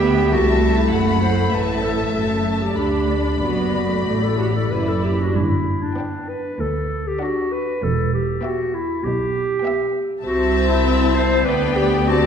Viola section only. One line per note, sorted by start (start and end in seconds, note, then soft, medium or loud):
0.01 0.31 B3 medium
0.32 2.13 A3 medium
2.15 2.76 A3 soft
2.78 3.36 D4 soft
3.42 3.87 B3 soft
3.91 4.39 A3 soft
4.39 4.47 F#4 soft
4.71 5.18 E4 soft
5.20 5.36 D4 soft
5.98 6.44 B3 soft
7.21 7.67 D4 soft
8.44 8.89 B3 soft
9.64 10.09 B3 medium
10.25 11.42 C4 medium
11.46 12.08 B3 medium
12.08 12.26 C4 medium